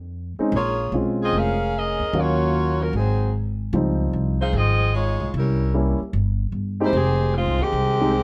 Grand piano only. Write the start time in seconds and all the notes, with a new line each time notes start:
0.39 G#3 C4 C#4 D#4
0.93 G#3 C4 C#4 F4
2.14 F#3 A#3 C#4 F5
3.74 F3 G3 C4 D#4
5.74 G3 A#3 C#4 E4
6.80 G#3 C4 D#4 G4
8.01 G#3 C4 D#4 G4